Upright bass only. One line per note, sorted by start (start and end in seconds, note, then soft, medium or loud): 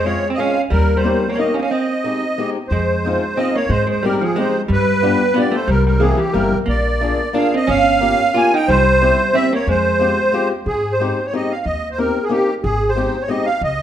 0.00 0.15 F2 medium
0.71 1.14 D#2 medium
2.71 3.14 F2 medium
3.69 4.13 G#2 medium
4.69 5.12 G2 medium
5.68 6.11 C2 medium
6.34 6.51 G1 medium
6.52 6.67 A#1 medium
6.67 7.11 A#1 medium
7.68 8.11 G1 medium
8.68 9.11 C2 medium
9.67 10.10 F2 medium
10.66 11.09 G#2 medium
11.66 12.08 D#2 medium
12.64 13.07 G#1 medium
13.61 13.82 C#2 medium